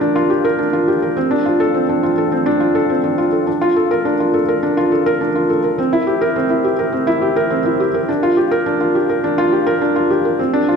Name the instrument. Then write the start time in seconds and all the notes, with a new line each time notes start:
felt piano
Already playing: F4 G4 A#4
0.00 D4
0.15 F4
0.30 G4
0.45 A#4
0.59 D4
0.73 F4
0.88 G4
1.02 A#4
1.17 C4
1.31 D4
1.46 F4
1.60 A4
1.74 C4
1.89 D4
2.03 F4
2.18 A4
2.32 C4
2.46 D4
2.60 F4
2.75 A4
2.90 C4
3.04 D4
3.18 F4
3.32 A4
3.47 D4
3.61 F4
3.76 A4
3.91 A#4
4.05 D4
4.20 F4
4.34 A4
4.48 A#4
4.63 D4
4.77 F4
4.92 A4
5.06 A#4
5.21 D4
5.35 F4
5.50 A4
5.64 A#4
5.78 C4
5.93 E4
6.07 G4
6.21 A#4
6.36 C4
6.50 E4
6.64 G4
6.79 A#4
6.93 C4
7.07 E4
7.22 G4
7.36 A#4
7.50 C4
7.65 E4
7.80 G4
7.94 A#4
8.09 D4
8.23 F4
8.37 G4
8.51 A#4
8.66 D4
8.81 F4
8.95 G4
9.09 A#4
9.24 D4
9.38 F4
9.52 G4
9.67 A#4
9.81 D4
9.96 F4
10.10 G4
10.25 A#4
10.39 C4
10.53 D4
10.69 F4